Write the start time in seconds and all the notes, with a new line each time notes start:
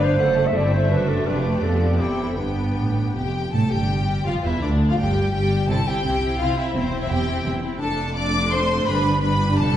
Already playing: G1 G2 B3 D4 B4 F5
0.02 C5
0.20 F#1 F#2 A3 A4 F#5
0.38 F#5
0.47 E5
0.55 G1 G2 A3 C4 E4 D5 E5
0.73 C5
0.90 F#1 F#2 D4 F#4 B4
1.08 A4
1.26 F1 F2 D4 G4 B4 D5
1.45 A3
1.62 F2 F3 B3 D4 A4
1.99 E1 E2 C4 E4 G4 A4 G5
2.29 E4
2.37 G1 G2 B3 D4 G4 G5
2.76 A1 A2
3.14 F1 F2 G4 G5
3.52 A1 A2 C3 A3 A4 A5
3.71 G1 G2 G3 G4 G5
4.26 F1 F2 F3 F4 F5
4.44 E1 E2 E3 E4 E5
4.62 D2 D3 D4 D5
4.89 F2 F3 F4 F5
4.97 G1 G2 G3 G4 G5
5.33 G1 G2 G3 G4 G5
5.68 C2 C3 C4 E4 A4 A5
5.86 C4 E4 G4 G5
6.04 C2 C3 C4 E4
6.23 C4 E4
6.39 C2 C3 C4 E4 F4 F5
6.56 C4 E4 E5
6.74 E1 E2 C4 E4 C5
6.92 C4 E4
7.01 E4 E5
7.09 E1 E2 C4 E4 G4 G5
7.28 C4 E4
7.45 E1 E2 C4 E4
7.62 C4 E4
7.80 F1 F2 A3 D4 A4 A5
8.15 A3 D4 D5 D6
8.51 C5 C6
8.86 G1 G2 G3 D4 B4 B5
9.22 G3 D4 B4 B5
9.58 F1 F2 A4 A5